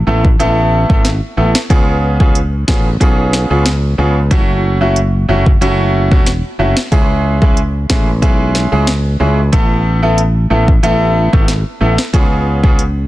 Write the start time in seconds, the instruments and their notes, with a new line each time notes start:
0.07 fretless electric bass A1, grand piano A3 B3 E4 A4
0.25 kick
0.39 fretless electric bass A1, grand piano A3 B3 E4 A4, closed hi-hat
0.89 fretless electric bass G#1, grand piano A3 B3 E4 A4, kick
1.05 snare, closed hi-hat
1.37 fretless electric bass A1, grand piano A3 B3 E4 A4
1.55 snare
1.70 fretless electric bass C#2, grand piano B3 C#4 F4 G#4, kick, closed hi-hat
2.20 grand piano B3 C#4 F4 G#4, kick
2.35 closed hi-hat
2.68 fretless electric bass A1, grand piano B3 C#4 F4 G#4, kick, snare
3.00 fretless electric bass B1, grand piano B3 C#4 F4 G#4, kick, closed hi-hat
3.33 snare
3.50 fretless electric bass C#2, grand piano B3 C#4 F4 G#4
3.66 snare, closed hi-hat
3.98 fretless electric bass C#2, grand piano B3 C#4 F4 G#4
4.31 fretless electric bass F#1, grand piano A3 C#4 E4 F#4, kick, closed hi-hat
4.81 grand piano A3 C#4 E4 F#4
4.96 closed hi-hat
5.29 fretless electric bass F#1, grand piano A3 C#4 E4 F#4
5.46 kick
5.61 fretless electric bass F#1, grand piano A3 C#4 E4 F#4, closed hi-hat
6.11 fretless electric bass E1, grand piano A3 C#4 E4 F#4, kick
6.26 snare, closed hi-hat
6.59 fretless electric bass F#1, grand piano A3 C#4 E4 F#4
6.77 snare
6.92 fretless electric bass C#2, grand piano G#3 C#4 E4 G#4, kick, closed hi-hat
7.41 grand piano G#3 C#4 E4 G#4, kick
7.57 closed hi-hat
7.89 fretless electric bass A1, grand piano G#3 C#4 E4 G#4, kick, snare
8.22 fretless electric bass B1, grand piano G#3 C#4 E4 G#4, kick, closed hi-hat
8.55 snare
8.72 fretless electric bass C#2, grand piano G#3 C#4 E4 G#4
8.87 snare, closed hi-hat
9.20 fretless electric bass C#2, grand piano G#3 C#4 E4 G#4
9.52 fretless electric bass A1, grand piano A3 B3 E4 A4, kick, closed hi-hat
10.02 grand piano A3 B3 E4 A4
10.18 closed hi-hat
10.50 fretless electric bass A1, grand piano A3 B3 E4 A4
10.68 kick
10.83 fretless electric bass A1, grand piano A3 B3 E4 A4, closed hi-hat
11.33 fretless electric bass G#1, grand piano A3 B3 E4 A4, kick
11.48 snare, closed hi-hat
11.81 fretless electric bass A1, grand piano A3 B3 E4 A4
11.98 snare
12.13 fretless electric bass C#2, grand piano B3 C#4 F4 G#4, kick, closed hi-hat
12.63 grand piano B3 C#4 F4 G#4, kick
12.79 closed hi-hat